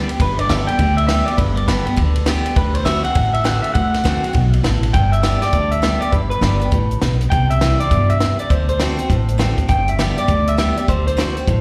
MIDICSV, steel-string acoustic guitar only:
0, 0, Header, 1, 2, 480
1, 0, Start_track
1, 0, Key_signature, 1, "major"
1, 0, Tempo, 296736
1, 312, Time_signature, 4, 2, 24, 8
1, 18779, End_track
2, 0, Start_track
2, 0, Title_t, "Steel-string acoustic guitar"
2, 0, Program_c, 0, 25
2, 149, Note_on_c, 0, 67, 51
2, 179, Note_on_c, 0, 59, 45
2, 313, Note_off_c, 0, 67, 0
2, 325, Note_on_c, 0, 43, 85
2, 328, Note_off_c, 0, 59, 0
2, 798, Note_on_c, 0, 50, 95
2, 813, Note_on_c, 0, 55, 96
2, 813, Note_on_c, 0, 59, 106
2, 826, Note_on_c, 0, 67, 100
2, 1077, Note_off_c, 0, 67, 0
2, 1083, Note_off_c, 0, 50, 0
2, 1090, Note_off_c, 0, 55, 0
2, 1091, Note_off_c, 0, 59, 0
2, 1096, Note_on_c, 0, 67, 64
2, 1129, Note_on_c, 0, 59, 58
2, 1242, Note_off_c, 0, 43, 0
2, 1266, Note_off_c, 0, 67, 0
2, 1282, Note_off_c, 0, 59, 0
2, 1282, Note_on_c, 0, 50, 91
2, 1737, Note_off_c, 0, 50, 0
2, 1756, Note_on_c, 0, 50, 88
2, 1765, Note_on_c, 0, 55, 97
2, 1773, Note_on_c, 0, 59, 94
2, 1780, Note_on_c, 0, 67, 107
2, 2042, Note_off_c, 0, 50, 0
2, 2047, Note_off_c, 0, 55, 0
2, 2050, Note_off_c, 0, 59, 0
2, 2050, Note_off_c, 0, 67, 0
2, 2070, Note_on_c, 0, 67, 61
2, 2098, Note_on_c, 0, 59, 46
2, 2233, Note_off_c, 0, 67, 0
2, 2246, Note_on_c, 0, 43, 90
2, 2247, Note_off_c, 0, 59, 0
2, 2718, Note_on_c, 0, 55, 98
2, 2720, Note_on_c, 0, 50, 95
2, 2733, Note_on_c, 0, 67, 91
2, 2734, Note_on_c, 0, 59, 105
2, 2986, Note_off_c, 0, 67, 0
2, 3003, Note_off_c, 0, 50, 0
2, 3003, Note_off_c, 0, 55, 0
2, 3005, Note_on_c, 0, 67, 67
2, 3011, Note_off_c, 0, 59, 0
2, 3045, Note_on_c, 0, 59, 54
2, 3162, Note_off_c, 0, 43, 0
2, 3177, Note_on_c, 0, 50, 96
2, 3180, Note_off_c, 0, 67, 0
2, 3200, Note_off_c, 0, 59, 0
2, 3635, Note_off_c, 0, 50, 0
2, 3654, Note_on_c, 0, 50, 89
2, 3663, Note_on_c, 0, 55, 77
2, 3676, Note_on_c, 0, 59, 95
2, 3684, Note_on_c, 0, 67, 103
2, 4124, Note_off_c, 0, 50, 0
2, 4128, Note_off_c, 0, 55, 0
2, 4135, Note_off_c, 0, 59, 0
2, 4139, Note_off_c, 0, 67, 0
2, 4148, Note_on_c, 0, 50, 80
2, 4593, Note_off_c, 0, 50, 0
2, 4612, Note_on_c, 0, 50, 91
2, 4626, Note_on_c, 0, 57, 95
2, 4641, Note_on_c, 0, 60, 108
2, 4642, Note_on_c, 0, 66, 100
2, 4888, Note_off_c, 0, 66, 0
2, 4907, Note_on_c, 0, 66, 64
2, 4909, Note_off_c, 0, 50, 0
2, 4912, Note_off_c, 0, 60, 0
2, 4916, Note_off_c, 0, 57, 0
2, 4931, Note_on_c, 0, 60, 57
2, 5090, Note_off_c, 0, 66, 0
2, 5094, Note_on_c, 0, 45, 101
2, 5103, Note_off_c, 0, 60, 0
2, 5566, Note_on_c, 0, 50, 89
2, 5574, Note_on_c, 0, 57, 99
2, 5587, Note_on_c, 0, 60, 105
2, 5598, Note_on_c, 0, 66, 90
2, 6025, Note_off_c, 0, 45, 0
2, 6039, Note_off_c, 0, 50, 0
2, 6043, Note_off_c, 0, 57, 0
2, 6050, Note_off_c, 0, 60, 0
2, 6055, Note_off_c, 0, 66, 0
2, 6060, Note_on_c, 0, 50, 86
2, 6510, Note_off_c, 0, 50, 0
2, 6529, Note_on_c, 0, 50, 90
2, 6542, Note_on_c, 0, 57, 101
2, 6553, Note_on_c, 0, 60, 103
2, 6560, Note_on_c, 0, 66, 109
2, 6827, Note_off_c, 0, 50, 0
2, 6829, Note_off_c, 0, 66, 0
2, 6834, Note_off_c, 0, 57, 0
2, 6839, Note_off_c, 0, 60, 0
2, 6848, Note_on_c, 0, 66, 58
2, 6875, Note_on_c, 0, 60, 54
2, 7008, Note_on_c, 0, 47, 82
2, 7021, Note_off_c, 0, 66, 0
2, 7034, Note_off_c, 0, 60, 0
2, 7480, Note_off_c, 0, 47, 0
2, 7507, Note_on_c, 0, 45, 87
2, 7969, Note_off_c, 0, 45, 0
2, 7986, Note_on_c, 0, 43, 88
2, 8459, Note_on_c, 0, 50, 82
2, 8465, Note_on_c, 0, 55, 103
2, 8478, Note_on_c, 0, 59, 100
2, 8482, Note_on_c, 0, 67, 97
2, 8743, Note_off_c, 0, 67, 0
2, 8752, Note_off_c, 0, 50, 0
2, 8755, Note_off_c, 0, 55, 0
2, 8761, Note_off_c, 0, 59, 0
2, 8762, Note_on_c, 0, 67, 67
2, 8785, Note_on_c, 0, 59, 43
2, 8911, Note_off_c, 0, 43, 0
2, 8938, Note_off_c, 0, 67, 0
2, 8939, Note_on_c, 0, 50, 96
2, 8949, Note_off_c, 0, 59, 0
2, 9393, Note_off_c, 0, 50, 0
2, 9413, Note_on_c, 0, 50, 90
2, 9423, Note_on_c, 0, 55, 91
2, 9429, Note_on_c, 0, 59, 89
2, 9434, Note_on_c, 0, 67, 105
2, 9696, Note_off_c, 0, 67, 0
2, 9709, Note_off_c, 0, 50, 0
2, 9714, Note_off_c, 0, 55, 0
2, 9716, Note_on_c, 0, 67, 53
2, 9717, Note_off_c, 0, 59, 0
2, 9749, Note_on_c, 0, 59, 51
2, 9894, Note_off_c, 0, 67, 0
2, 9910, Note_on_c, 0, 43, 88
2, 9911, Note_off_c, 0, 59, 0
2, 10379, Note_on_c, 0, 50, 86
2, 10390, Note_on_c, 0, 55, 91
2, 10399, Note_on_c, 0, 59, 88
2, 10406, Note_on_c, 0, 67, 92
2, 10652, Note_off_c, 0, 67, 0
2, 10671, Note_on_c, 0, 67, 62
2, 10672, Note_off_c, 0, 50, 0
2, 10677, Note_off_c, 0, 55, 0
2, 10682, Note_off_c, 0, 59, 0
2, 10708, Note_on_c, 0, 59, 50
2, 10833, Note_off_c, 0, 43, 0
2, 10852, Note_off_c, 0, 67, 0
2, 10864, Note_on_c, 0, 45, 85
2, 10870, Note_off_c, 0, 59, 0
2, 11328, Note_off_c, 0, 45, 0
2, 11349, Note_on_c, 0, 47, 80
2, 11810, Note_off_c, 0, 47, 0
2, 11842, Note_on_c, 0, 48, 86
2, 12312, Note_on_c, 0, 52, 92
2, 12321, Note_on_c, 0, 55, 96
2, 12323, Note_on_c, 0, 60, 102
2, 12336, Note_on_c, 0, 64, 99
2, 12598, Note_off_c, 0, 52, 0
2, 12603, Note_off_c, 0, 55, 0
2, 12603, Note_off_c, 0, 60, 0
2, 12610, Note_off_c, 0, 64, 0
2, 12627, Note_on_c, 0, 64, 59
2, 12659, Note_on_c, 0, 60, 48
2, 12758, Note_off_c, 0, 48, 0
2, 12790, Note_off_c, 0, 64, 0
2, 12799, Note_on_c, 0, 47, 97
2, 12805, Note_off_c, 0, 60, 0
2, 13255, Note_off_c, 0, 47, 0
2, 13270, Note_on_c, 0, 48, 94
2, 13731, Note_off_c, 0, 48, 0
2, 13754, Note_on_c, 0, 50, 88
2, 14207, Note_off_c, 0, 50, 0
2, 14226, Note_on_c, 0, 50, 102
2, 14236, Note_on_c, 0, 60, 106
2, 14238, Note_on_c, 0, 57, 90
2, 14252, Note_on_c, 0, 66, 97
2, 14492, Note_off_c, 0, 66, 0
2, 14511, Note_on_c, 0, 66, 69
2, 14515, Note_off_c, 0, 50, 0
2, 14520, Note_off_c, 0, 60, 0
2, 14521, Note_off_c, 0, 57, 0
2, 14538, Note_on_c, 0, 60, 52
2, 14692, Note_off_c, 0, 66, 0
2, 14705, Note_off_c, 0, 60, 0
2, 14722, Note_on_c, 0, 45, 97
2, 15170, Note_on_c, 0, 50, 83
2, 15186, Note_on_c, 0, 57, 94
2, 15197, Note_on_c, 0, 60, 91
2, 15205, Note_on_c, 0, 66, 95
2, 15461, Note_off_c, 0, 66, 0
2, 15467, Note_off_c, 0, 50, 0
2, 15475, Note_off_c, 0, 57, 0
2, 15481, Note_off_c, 0, 60, 0
2, 15481, Note_on_c, 0, 66, 54
2, 15511, Note_on_c, 0, 60, 46
2, 15639, Note_off_c, 0, 45, 0
2, 15656, Note_off_c, 0, 66, 0
2, 15666, Note_on_c, 0, 43, 89
2, 15671, Note_off_c, 0, 60, 0
2, 16153, Note_on_c, 0, 50, 91
2, 16154, Note_on_c, 0, 55, 98
2, 16165, Note_on_c, 0, 59, 96
2, 16174, Note_on_c, 0, 67, 94
2, 16437, Note_off_c, 0, 67, 0
2, 16439, Note_off_c, 0, 50, 0
2, 16440, Note_off_c, 0, 55, 0
2, 16445, Note_off_c, 0, 59, 0
2, 16457, Note_on_c, 0, 67, 67
2, 16479, Note_on_c, 0, 59, 55
2, 16591, Note_off_c, 0, 43, 0
2, 16625, Note_off_c, 0, 67, 0
2, 16628, Note_on_c, 0, 50, 84
2, 16636, Note_off_c, 0, 59, 0
2, 17088, Note_off_c, 0, 50, 0
2, 17107, Note_on_c, 0, 50, 82
2, 17123, Note_on_c, 0, 55, 96
2, 17132, Note_on_c, 0, 67, 109
2, 17137, Note_on_c, 0, 59, 96
2, 17391, Note_off_c, 0, 67, 0
2, 17396, Note_off_c, 0, 50, 0
2, 17404, Note_off_c, 0, 55, 0
2, 17410, Note_on_c, 0, 67, 56
2, 17411, Note_off_c, 0, 59, 0
2, 17429, Note_on_c, 0, 59, 49
2, 17582, Note_off_c, 0, 67, 0
2, 17591, Note_off_c, 0, 59, 0
2, 17607, Note_on_c, 0, 50, 81
2, 18044, Note_off_c, 0, 50, 0
2, 18064, Note_on_c, 0, 50, 91
2, 18072, Note_on_c, 0, 57, 93
2, 18078, Note_on_c, 0, 60, 99
2, 18089, Note_on_c, 0, 66, 90
2, 18355, Note_off_c, 0, 50, 0
2, 18359, Note_off_c, 0, 57, 0
2, 18363, Note_off_c, 0, 60, 0
2, 18368, Note_off_c, 0, 66, 0
2, 18388, Note_on_c, 0, 66, 61
2, 18414, Note_on_c, 0, 60, 50
2, 18551, Note_off_c, 0, 66, 0
2, 18565, Note_off_c, 0, 60, 0
2, 18570, Note_on_c, 0, 45, 84
2, 18779, Note_off_c, 0, 45, 0
2, 18779, End_track
0, 0, End_of_file